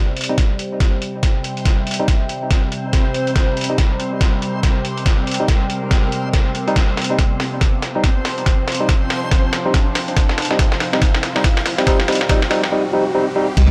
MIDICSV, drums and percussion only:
0, 0, Header, 1, 2, 480
1, 0, Start_track
1, 0, Key_signature, -3, "minor"
1, 0, Tempo, 425532
1, 1867, Time_signature, 4, 2, 24, 8
1, 15464, End_track
2, 0, Start_track
2, 0, Title_t, "Drums"
2, 186, Note_on_c, 9, 42, 47
2, 235, Note_off_c, 9, 42, 0
2, 235, Note_on_c, 9, 42, 60
2, 266, Note_off_c, 9, 42, 0
2, 266, Note_on_c, 9, 42, 78
2, 379, Note_off_c, 9, 42, 0
2, 426, Note_on_c, 9, 36, 97
2, 426, Note_on_c, 9, 38, 45
2, 426, Note_on_c, 9, 42, 75
2, 539, Note_off_c, 9, 36, 0
2, 539, Note_off_c, 9, 38, 0
2, 539, Note_off_c, 9, 42, 0
2, 667, Note_on_c, 9, 42, 51
2, 780, Note_off_c, 9, 42, 0
2, 906, Note_on_c, 9, 36, 96
2, 907, Note_on_c, 9, 38, 46
2, 907, Note_on_c, 9, 42, 74
2, 1019, Note_off_c, 9, 36, 0
2, 1020, Note_off_c, 9, 38, 0
2, 1020, Note_off_c, 9, 42, 0
2, 1148, Note_on_c, 9, 42, 50
2, 1260, Note_off_c, 9, 42, 0
2, 1386, Note_on_c, 9, 36, 92
2, 1387, Note_on_c, 9, 38, 47
2, 1387, Note_on_c, 9, 42, 76
2, 1499, Note_off_c, 9, 36, 0
2, 1500, Note_off_c, 9, 38, 0
2, 1500, Note_off_c, 9, 42, 0
2, 1627, Note_on_c, 9, 42, 54
2, 1740, Note_off_c, 9, 42, 0
2, 1772, Note_on_c, 9, 42, 38
2, 1866, Note_on_c, 9, 36, 93
2, 1867, Note_off_c, 9, 42, 0
2, 1867, Note_on_c, 9, 38, 49
2, 1867, Note_on_c, 9, 42, 76
2, 1979, Note_off_c, 9, 36, 0
2, 1980, Note_off_c, 9, 38, 0
2, 1980, Note_off_c, 9, 42, 0
2, 2106, Note_on_c, 9, 42, 48
2, 2155, Note_off_c, 9, 42, 0
2, 2155, Note_on_c, 9, 42, 63
2, 2186, Note_off_c, 9, 42, 0
2, 2186, Note_on_c, 9, 42, 76
2, 2299, Note_off_c, 9, 42, 0
2, 2346, Note_on_c, 9, 36, 95
2, 2347, Note_on_c, 9, 38, 47
2, 2347, Note_on_c, 9, 42, 76
2, 2459, Note_off_c, 9, 36, 0
2, 2459, Note_off_c, 9, 38, 0
2, 2459, Note_off_c, 9, 42, 0
2, 2586, Note_on_c, 9, 42, 50
2, 2699, Note_off_c, 9, 42, 0
2, 2826, Note_on_c, 9, 36, 95
2, 2826, Note_on_c, 9, 38, 52
2, 2826, Note_on_c, 9, 42, 76
2, 2939, Note_off_c, 9, 36, 0
2, 2939, Note_off_c, 9, 38, 0
2, 2939, Note_off_c, 9, 42, 0
2, 3066, Note_on_c, 9, 42, 51
2, 3179, Note_off_c, 9, 42, 0
2, 3306, Note_on_c, 9, 36, 96
2, 3306, Note_on_c, 9, 38, 52
2, 3306, Note_on_c, 9, 42, 76
2, 3419, Note_off_c, 9, 36, 0
2, 3419, Note_off_c, 9, 38, 0
2, 3419, Note_off_c, 9, 42, 0
2, 3547, Note_on_c, 9, 42, 52
2, 3659, Note_off_c, 9, 42, 0
2, 3690, Note_on_c, 9, 42, 36
2, 3786, Note_off_c, 9, 42, 0
2, 3786, Note_on_c, 9, 36, 93
2, 3786, Note_on_c, 9, 38, 56
2, 3786, Note_on_c, 9, 42, 72
2, 3898, Note_off_c, 9, 38, 0
2, 3898, Note_off_c, 9, 42, 0
2, 3899, Note_off_c, 9, 36, 0
2, 4026, Note_on_c, 9, 42, 44
2, 4074, Note_off_c, 9, 42, 0
2, 4074, Note_on_c, 9, 42, 59
2, 4105, Note_off_c, 9, 42, 0
2, 4105, Note_on_c, 9, 42, 77
2, 4218, Note_off_c, 9, 42, 0
2, 4266, Note_on_c, 9, 36, 97
2, 4266, Note_on_c, 9, 38, 56
2, 4266, Note_on_c, 9, 42, 73
2, 4379, Note_off_c, 9, 36, 0
2, 4379, Note_off_c, 9, 38, 0
2, 4379, Note_off_c, 9, 42, 0
2, 4507, Note_on_c, 9, 42, 49
2, 4620, Note_off_c, 9, 42, 0
2, 4746, Note_on_c, 9, 36, 97
2, 4748, Note_on_c, 9, 38, 58
2, 4748, Note_on_c, 9, 42, 74
2, 4859, Note_off_c, 9, 36, 0
2, 4860, Note_off_c, 9, 38, 0
2, 4860, Note_off_c, 9, 42, 0
2, 4987, Note_on_c, 9, 42, 49
2, 5100, Note_off_c, 9, 42, 0
2, 5226, Note_on_c, 9, 36, 94
2, 5227, Note_on_c, 9, 38, 60
2, 5227, Note_on_c, 9, 42, 72
2, 5339, Note_off_c, 9, 36, 0
2, 5339, Note_off_c, 9, 38, 0
2, 5339, Note_off_c, 9, 42, 0
2, 5468, Note_on_c, 9, 42, 52
2, 5580, Note_off_c, 9, 42, 0
2, 5612, Note_on_c, 9, 42, 35
2, 5706, Note_on_c, 9, 36, 92
2, 5707, Note_off_c, 9, 42, 0
2, 5707, Note_on_c, 9, 38, 62
2, 5707, Note_on_c, 9, 42, 73
2, 5818, Note_off_c, 9, 36, 0
2, 5819, Note_off_c, 9, 38, 0
2, 5819, Note_off_c, 9, 42, 0
2, 5947, Note_on_c, 9, 42, 46
2, 5995, Note_off_c, 9, 42, 0
2, 5995, Note_on_c, 9, 42, 58
2, 6026, Note_off_c, 9, 42, 0
2, 6026, Note_on_c, 9, 42, 74
2, 6138, Note_off_c, 9, 42, 0
2, 6186, Note_on_c, 9, 36, 99
2, 6186, Note_on_c, 9, 38, 61
2, 6186, Note_on_c, 9, 42, 73
2, 6299, Note_off_c, 9, 36, 0
2, 6299, Note_off_c, 9, 38, 0
2, 6299, Note_off_c, 9, 42, 0
2, 6426, Note_on_c, 9, 42, 49
2, 6539, Note_off_c, 9, 42, 0
2, 6665, Note_on_c, 9, 38, 67
2, 6665, Note_on_c, 9, 42, 75
2, 6666, Note_on_c, 9, 36, 99
2, 6778, Note_off_c, 9, 36, 0
2, 6778, Note_off_c, 9, 38, 0
2, 6778, Note_off_c, 9, 42, 0
2, 6906, Note_on_c, 9, 42, 49
2, 7018, Note_off_c, 9, 42, 0
2, 7145, Note_on_c, 9, 38, 67
2, 7145, Note_on_c, 9, 42, 74
2, 7146, Note_on_c, 9, 36, 97
2, 7258, Note_off_c, 9, 38, 0
2, 7258, Note_off_c, 9, 42, 0
2, 7259, Note_off_c, 9, 36, 0
2, 7386, Note_on_c, 9, 42, 50
2, 7498, Note_off_c, 9, 42, 0
2, 7531, Note_on_c, 9, 42, 34
2, 7626, Note_on_c, 9, 36, 93
2, 7627, Note_off_c, 9, 42, 0
2, 7627, Note_on_c, 9, 38, 73
2, 7627, Note_on_c, 9, 42, 73
2, 7739, Note_off_c, 9, 36, 0
2, 7740, Note_off_c, 9, 38, 0
2, 7740, Note_off_c, 9, 42, 0
2, 7866, Note_on_c, 9, 38, 73
2, 7866, Note_on_c, 9, 42, 44
2, 7914, Note_off_c, 9, 42, 0
2, 7914, Note_on_c, 9, 42, 59
2, 7945, Note_off_c, 9, 42, 0
2, 7945, Note_on_c, 9, 42, 78
2, 7979, Note_off_c, 9, 38, 0
2, 8058, Note_off_c, 9, 42, 0
2, 8106, Note_on_c, 9, 36, 98
2, 8106, Note_on_c, 9, 38, 71
2, 8106, Note_on_c, 9, 42, 69
2, 8218, Note_off_c, 9, 38, 0
2, 8218, Note_off_c, 9, 42, 0
2, 8219, Note_off_c, 9, 36, 0
2, 8345, Note_on_c, 9, 38, 78
2, 8345, Note_on_c, 9, 46, 61
2, 8458, Note_off_c, 9, 38, 0
2, 8458, Note_off_c, 9, 46, 0
2, 8585, Note_on_c, 9, 38, 74
2, 8585, Note_on_c, 9, 42, 73
2, 8586, Note_on_c, 9, 36, 96
2, 8698, Note_off_c, 9, 38, 0
2, 8698, Note_off_c, 9, 42, 0
2, 8699, Note_off_c, 9, 36, 0
2, 8825, Note_on_c, 9, 38, 76
2, 8825, Note_on_c, 9, 42, 49
2, 8938, Note_off_c, 9, 38, 0
2, 8938, Note_off_c, 9, 42, 0
2, 9065, Note_on_c, 9, 38, 76
2, 9065, Note_on_c, 9, 42, 71
2, 9067, Note_on_c, 9, 36, 96
2, 9178, Note_off_c, 9, 38, 0
2, 9178, Note_off_c, 9, 42, 0
2, 9179, Note_off_c, 9, 36, 0
2, 9305, Note_on_c, 9, 38, 82
2, 9305, Note_on_c, 9, 46, 90
2, 9418, Note_off_c, 9, 38, 0
2, 9418, Note_off_c, 9, 46, 0
2, 9450, Note_on_c, 9, 42, 34
2, 9545, Note_off_c, 9, 42, 0
2, 9545, Note_on_c, 9, 38, 77
2, 9545, Note_on_c, 9, 42, 76
2, 9547, Note_on_c, 9, 36, 96
2, 9658, Note_off_c, 9, 38, 0
2, 9658, Note_off_c, 9, 42, 0
2, 9660, Note_off_c, 9, 36, 0
2, 9786, Note_on_c, 9, 38, 82
2, 9786, Note_on_c, 9, 42, 47
2, 9834, Note_off_c, 9, 42, 0
2, 9834, Note_on_c, 9, 42, 63
2, 9865, Note_off_c, 9, 42, 0
2, 9865, Note_on_c, 9, 42, 76
2, 9899, Note_off_c, 9, 38, 0
2, 9978, Note_off_c, 9, 42, 0
2, 10026, Note_on_c, 9, 38, 78
2, 10026, Note_on_c, 9, 42, 75
2, 10027, Note_on_c, 9, 36, 101
2, 10138, Note_off_c, 9, 38, 0
2, 10138, Note_off_c, 9, 42, 0
2, 10139, Note_off_c, 9, 36, 0
2, 10266, Note_on_c, 9, 38, 87
2, 10266, Note_on_c, 9, 46, 63
2, 10379, Note_off_c, 9, 38, 0
2, 10379, Note_off_c, 9, 46, 0
2, 10506, Note_on_c, 9, 38, 86
2, 10506, Note_on_c, 9, 42, 78
2, 10507, Note_on_c, 9, 36, 99
2, 10619, Note_off_c, 9, 36, 0
2, 10619, Note_off_c, 9, 38, 0
2, 10619, Note_off_c, 9, 42, 0
2, 10747, Note_on_c, 9, 38, 89
2, 10747, Note_on_c, 9, 42, 51
2, 10859, Note_off_c, 9, 38, 0
2, 10859, Note_off_c, 9, 42, 0
2, 10986, Note_on_c, 9, 36, 98
2, 10987, Note_on_c, 9, 38, 84
2, 10987, Note_on_c, 9, 42, 77
2, 11099, Note_off_c, 9, 36, 0
2, 11100, Note_off_c, 9, 38, 0
2, 11100, Note_off_c, 9, 42, 0
2, 11226, Note_on_c, 9, 38, 91
2, 11226, Note_on_c, 9, 46, 98
2, 11339, Note_off_c, 9, 38, 0
2, 11339, Note_off_c, 9, 46, 0
2, 11371, Note_on_c, 9, 42, 37
2, 11466, Note_off_c, 9, 42, 0
2, 11466, Note_on_c, 9, 38, 91
2, 11466, Note_on_c, 9, 42, 78
2, 11467, Note_on_c, 9, 36, 98
2, 11579, Note_off_c, 9, 36, 0
2, 11579, Note_off_c, 9, 38, 0
2, 11579, Note_off_c, 9, 42, 0
2, 11611, Note_on_c, 9, 38, 81
2, 11707, Note_off_c, 9, 38, 0
2, 11707, Note_on_c, 9, 38, 93
2, 11707, Note_on_c, 9, 42, 51
2, 11755, Note_off_c, 9, 42, 0
2, 11755, Note_on_c, 9, 42, 67
2, 11786, Note_off_c, 9, 42, 0
2, 11786, Note_on_c, 9, 42, 82
2, 11820, Note_off_c, 9, 38, 0
2, 11851, Note_on_c, 9, 38, 81
2, 11899, Note_off_c, 9, 42, 0
2, 11946, Note_on_c, 9, 36, 101
2, 11947, Note_off_c, 9, 38, 0
2, 11947, Note_on_c, 9, 38, 93
2, 11947, Note_on_c, 9, 42, 81
2, 12059, Note_off_c, 9, 36, 0
2, 12060, Note_off_c, 9, 38, 0
2, 12060, Note_off_c, 9, 42, 0
2, 12090, Note_on_c, 9, 38, 84
2, 12186, Note_off_c, 9, 38, 0
2, 12186, Note_on_c, 9, 38, 95
2, 12186, Note_on_c, 9, 46, 62
2, 12299, Note_off_c, 9, 38, 0
2, 12299, Note_off_c, 9, 46, 0
2, 12332, Note_on_c, 9, 38, 87
2, 12426, Note_on_c, 9, 36, 105
2, 12427, Note_off_c, 9, 38, 0
2, 12427, Note_on_c, 9, 38, 92
2, 12427, Note_on_c, 9, 42, 77
2, 12539, Note_off_c, 9, 36, 0
2, 12540, Note_off_c, 9, 38, 0
2, 12540, Note_off_c, 9, 42, 0
2, 12571, Note_on_c, 9, 38, 87
2, 12667, Note_off_c, 9, 38, 0
2, 12667, Note_on_c, 9, 38, 97
2, 12667, Note_on_c, 9, 42, 56
2, 12780, Note_off_c, 9, 38, 0
2, 12780, Note_off_c, 9, 42, 0
2, 12812, Note_on_c, 9, 38, 86
2, 12906, Note_on_c, 9, 36, 98
2, 12907, Note_off_c, 9, 38, 0
2, 12907, Note_on_c, 9, 38, 98
2, 12907, Note_on_c, 9, 42, 80
2, 13019, Note_off_c, 9, 36, 0
2, 13020, Note_off_c, 9, 38, 0
2, 13020, Note_off_c, 9, 42, 0
2, 13051, Note_on_c, 9, 38, 90
2, 13148, Note_off_c, 9, 38, 0
2, 13148, Note_on_c, 9, 38, 100
2, 13148, Note_on_c, 9, 46, 100
2, 13261, Note_off_c, 9, 38, 0
2, 13261, Note_off_c, 9, 46, 0
2, 13292, Note_on_c, 9, 38, 91
2, 13292, Note_on_c, 9, 42, 38
2, 13387, Note_on_c, 9, 36, 99
2, 13388, Note_off_c, 9, 38, 0
2, 13388, Note_off_c, 9, 42, 0
2, 13388, Note_on_c, 9, 38, 103
2, 13388, Note_on_c, 9, 42, 80
2, 13499, Note_off_c, 9, 36, 0
2, 13500, Note_off_c, 9, 38, 0
2, 13500, Note_off_c, 9, 42, 0
2, 13531, Note_on_c, 9, 38, 91
2, 13627, Note_off_c, 9, 38, 0
2, 13627, Note_on_c, 9, 38, 102
2, 13627, Note_on_c, 9, 42, 52
2, 13676, Note_off_c, 9, 42, 0
2, 13676, Note_on_c, 9, 42, 68
2, 13708, Note_off_c, 9, 42, 0
2, 13708, Note_on_c, 9, 42, 84
2, 13740, Note_off_c, 9, 38, 0
2, 13772, Note_on_c, 9, 38, 91
2, 13821, Note_off_c, 9, 42, 0
2, 13867, Note_on_c, 9, 36, 102
2, 13869, Note_off_c, 9, 38, 0
2, 13869, Note_on_c, 9, 38, 102
2, 13869, Note_on_c, 9, 42, 84
2, 13979, Note_off_c, 9, 36, 0
2, 13982, Note_off_c, 9, 38, 0
2, 13982, Note_off_c, 9, 42, 0
2, 14013, Note_on_c, 9, 38, 93
2, 14109, Note_off_c, 9, 38, 0
2, 14109, Note_on_c, 9, 38, 102
2, 14109, Note_on_c, 9, 46, 62
2, 14221, Note_off_c, 9, 38, 0
2, 14221, Note_off_c, 9, 46, 0
2, 14252, Note_on_c, 9, 38, 94
2, 14365, Note_off_c, 9, 38, 0
2, 15307, Note_on_c, 9, 36, 119
2, 15307, Note_on_c, 9, 42, 80
2, 15307, Note_on_c, 9, 49, 105
2, 15420, Note_off_c, 9, 36, 0
2, 15420, Note_off_c, 9, 42, 0
2, 15420, Note_off_c, 9, 49, 0
2, 15464, End_track
0, 0, End_of_file